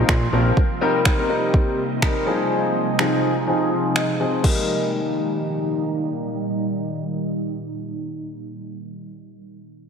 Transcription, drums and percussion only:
0.09 finger snap, kick
0.57 kick
1.05 finger snap, kick
1.54 kick
2.02 finger snap, kick
2.99 finger snap
3.96 finger snap
4.44 kick, crash

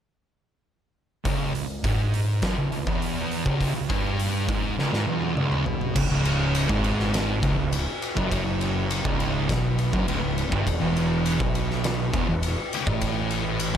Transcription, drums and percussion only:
1.25 kick, open hi-hat
1.55 open hi-hat
1.84 kick, open hi-hat
2.14 open hi-hat
2.42 kick, snare, open hi-hat
2.72 open hi-hat
2.87 kick
3.02 open hi-hat
3.31 open hi-hat
3.46 kick
3.61 kick, open hi-hat
3.90 kick, open hi-hat
4.19 open hi-hat
4.49 kick, open hi-hat
4.79 snare
4.94 snare
5.07 high tom
5.22 high tom
5.37 mid tom
5.52 mid tom
5.66 floor tom
5.81 floor tom
5.96 kick, crash
6.25 ride
6.55 ride
6.69 kick
6.84 ride
7.00 snare
7.14 snare, ride
7.43 kick, ride
7.73 ride
8.02 ride
8.17 kick
8.32 kick, ride
8.61 ride
8.91 ride
9.05 kick
9.20 ride
9.49 kick, snare, ride
9.79 ride
9.93 kick
10.08 ride
10.38 ride
10.52 kick
10.67 kick, ride
10.96 ride
11.26 ride
11.40 kick
11.55 ride
11.71 snare
11.84 snare, ride
12.14 kick, ride
12.43 ride
12.73 ride
12.87 kick
13.02 kick, ride
13.31 ride
13.60 ride

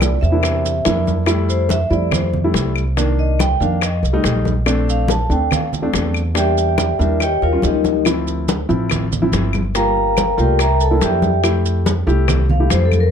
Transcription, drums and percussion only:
0.01 high bongo, high conga, claves, maracas
0.22 high bongo, high conga, maracas
0.43 high bongo, high conga, claves, maracas
0.65 high bongo, high conga, maracas
0.85 high bongo, low bongo, high conga, maracas
1.05 high bongo, high conga, maracas
1.26 high bongo, high conga, claves, maracas
1.49 high conga, maracas
1.69 high bongo, high conga, maracas
1.91 high conga, maracas
2.11 high bongo, high conga, low conga, claves, maracas
2.34 high conga, low conga
2.54 high bongo, low bongo, high conga, maracas
2.76 claves, maracas
2.97 high bongo, high conga, maracas
3.19 high conga
3.39 high bongo, high conga, claves, maracas
3.61 high bongo, high conga, maracas
3.81 high bongo, high conga, claves, maracas
4.03 high bongo, high conga, maracas
4.24 high bongo, low bongo, high conga, maracas
4.45 high bongo, high conga, maracas
4.66 high bongo, claves, maracas
4.88 high conga, maracas
5.08 high bongo, high conga, maracas
5.30 high conga, maracas
5.51 high bongo, high conga, low conga, claves, maracas
5.73 high conga, low conga, maracas
5.93 high bongo, low bongo, high conga, maracas
6.14 claves, maracas
6.35 high bongo, high conga, maracas
6.57 high conga, maracas
6.78 high bongo, high conga, claves, maracas
6.99 high bongo, high conga, maracas
7.20 high bongo, high conga, claves, maracas
7.42 low bongo, high conga
7.62 low bongo, high conga, maracas
7.84 low bongo, high conga, maracas
8.05 high bongo, claves, maracas
8.28 high conga, maracas
8.49 high bongo, high conga, maracas
8.70 high conga, maracas
8.90 high bongo, high conga, low conga, claves, maracas
9.12 high conga, low conga, maracas
9.33 high bongo, low bongo, high conga, maracas
9.53 high conga, claves, maracas
9.75 high bongo, high conga, maracas
9.97 high conga
10.17 high bongo, high conga, claves, maracas
10.38 high bongo, high conga, maracas
10.59 high bongo, high conga, claves, maracas
10.80 high bongo, high conga, maracas
11.01 high bongo, low bongo, high conga, maracas
11.22 high bongo, high conga, maracas
11.44 high bongo, high conga, claves, maracas
11.65 high conga, maracas
11.86 high bongo, high conga, maracas
12.08 high conga, maracas
12.28 high bongo, high conga, low conga, claves, maracas
12.50 high conga, low conga
12.70 high bongo, low bongo, high conga, maracas
12.92 high conga, claves, maracas

